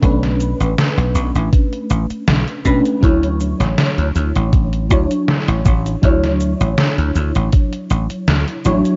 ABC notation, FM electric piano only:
X:1
M:4/4
L:1/8
Q:"Swing 16ths" 1/4=80
K:D
V:1 name="FM electric piano"
[A,CDB]6- [A,CDB] [A,CDB] | [F,DEc]4- [F,DEc] [F,DEc]3 | [F,DEc]6- [F,DEc] [F,DEc] |]